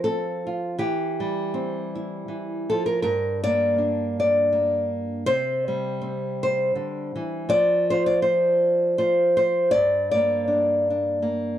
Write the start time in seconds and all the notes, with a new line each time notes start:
Already playing: F3 F4
0.04 C4 A4
0.47 F4
0.78 E3 G4
1.20 G3
1.54 C4
1.95 E4
2.28 E3
2.70 F3 A4
2.86 A#4
3.02 G2 A#4
3.44 A#3 D5
3.78 D4
4.20 D5
4.52 A#3
5.26 C3 C5
5.68 G3
6.01 C4
6.43 C5
6.75 D3
7.16 E3
7.49 F3 D5
7.90 F4 C5
8.06 D5
8.22 C5
8.98 F4 C5
9.37 C5
9.71 G2 D5
10.11 A#3 D5
10.48 D4
10.90 D4
11.22 A#3